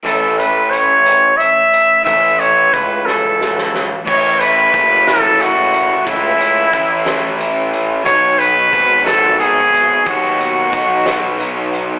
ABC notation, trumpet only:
X:1
M:6/8
L:1/8
Q:3/8=60
K:A
V:1 name="Trumpet"
A B c2 e2 | e c B A2 z | c B2 A F2 | E4- E z |
c B2 A G2 | F4- F z |]